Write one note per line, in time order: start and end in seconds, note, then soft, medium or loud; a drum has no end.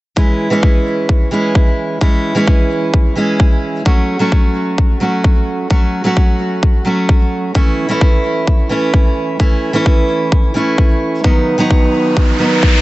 0.16 0.48 E3 medium
0.16 0.48 G#3 medium
0.16 0.49 C#4 medium
0.16 0.49 E4 medium
0.16 kick loud
0.50 1.29 E3 medium
0.50 1.29 G#3 medium
0.50 1.30 C#4 medium
0.50 1.30 E4 medium
0.63 kick loud
1.09 kick loud
1.31 1.98 E3 medium
1.31 1.98 G#3 medium
1.31 1.99 C#4 medium
1.31 1.99 E4 medium
1.55 kick loud
2.01 2.33 E3 medium
2.01 2.33 G#3 medium
2.01 2.33 C#4 medium
2.01 2.33 E4 medium
2.01 kick loud
2.35 3.13 E3 medium
2.35 3.14 G#3 medium
2.35 3.14 C#4 medium
2.35 3.15 E4 medium
2.47 kick loud
2.94 kick loud
3.16 3.83 E3 medium
3.16 3.83 G#3 medium
3.16 3.83 C#4 medium
3.16 3.84 E4 medium
3.40 kick loud
3.85 4.17 F#3 medium
3.85 4.18 A3 medium
3.85 4.18 C#4 medium
3.85 4.18 F#4 medium
3.85 kick loud
4.19 4.98 F#3 medium
4.19 4.98 A3 medium
4.19 4.99 C#4 medium
4.19 4.99 F#4 loud
4.32 kick loud
4.78 kick loud
5.00 5.67 F#3 medium
5.00 5.68 A3 medium
5.00 5.68 C#4 medium
5.00 5.68 F#4 medium
5.24 kick loud
5.70 6.02 F#3 medium
5.70 6.02 A3 medium
5.70 6.02 C#4 medium
5.70 6.03 F#4 medium
5.70 kick loud
6.04 6.83 F#3 medium
6.04 6.83 A3 medium
6.04 6.83 C#4 medium
6.04 6.84 F#4 medium
6.17 kick loud
6.63 kick loud
6.85 7.52 F#3 medium
6.85 7.52 A3 medium
6.85 7.53 C#4 medium
6.85 7.53 F#4 medium
7.09 kick loud
7.55 7.87 E3 medium
7.55 7.87 A3 medium
7.55 7.87 C#4 medium
7.55 7.87 E4 medium
7.55 kick loud
7.89 8.67 E3 medium
7.89 8.68 A3 medium
7.89 8.68 C#4 medium
7.89 8.68 E4 medium
8.01 kick loud
8.47 kick loud
8.69 9.36 E3 medium
8.69 9.37 A3 medium
8.69 9.37 C#4 medium
8.69 9.38 E4 medium
8.94 kick loud
9.39 9.71 E3 medium
9.39 9.72 A3 medium
9.39 9.72 C#4 medium
9.39 9.72 E4 medium
9.39 kick loud
9.73 10.52 E3 medium
9.73 10.52 A3 medium
9.73 10.53 C#4 medium
9.73 10.53 E4 loud
9.86 kick loud
10.32 kick loud
10.54 11.21 E3 medium
10.54 11.21 A3 medium
10.54 11.22 C#4 medium
10.54 11.22 E4 medium
10.78 kick loud
11.24 11.56 D#3 medium
11.24 11.56 F#3 medium
11.24 11.56 B3 medium
11.24 11.57 D#4 medium
11.24 kick loud
11.24 riser medium
11.58 12.36 D#3 medium
11.58 12.37 F#3 medium
11.58 12.37 B3 medium
11.58 12.38 D#4 loud
11.71 kick loud
12.17 kick loud
12.38 12.81 D#3 medium
12.38 12.81 F#3 medium
12.38 12.81 B3 medium
12.38 12.81 D#4 medium
12.63 kick loud